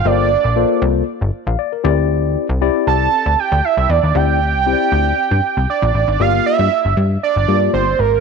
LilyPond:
<<
  \new Staff \with { instrumentName = "Analog synth lead" } { \time 4/4 \key g \dorian \tempo 4 = 117 d''4. r2 r8 | r4. a''4 g''8 e''8 d''8 | g''2. d''4 | f''8 e''4 r8 d''4 c''8 bes'8 | }
  \new Staff \with { instrumentName = "Tine electric piano" } { \time 4/4 \key g \dorian << { r2 r8. f''16 d''16 bes'8 r16 | r1 | r1 | r1 | } \\ { <bes f' a' c''>8 r8 <bes f' a' c''>4 r4. <c' e' g' d''>8~ | <c' e' g' d''>8 r8 <c' e' g' d''>4 r2 | <c' e' g' d''>8 r8 <c' e' g' c'' d''>4 r2 | <bes f' g' d''>4 r4. <bes f' g' d''>8 r4 | } >> }
  \new Staff \with { instrumentName = "Analog synth bass" } { \clef bass \time 4/4 \key g \dorian g,,8. bes,,8 r16 c,8 r16 g,,16 r16 bes,,16 r8 d,8~ | d,8. c,8 r16 c,8 r16 d,16 r16 d,16 r16 c,16 e,16 ees,16 | d,8. c,8 r16 d,8 r16 g,16 r16 c,16 r16 bes,,16 a,,16 aes,,16 | g,,8 r16 g,16 r16 g,,16 g,8 r16 g,,16 g,8 g,,8 aes,,8 | }
>>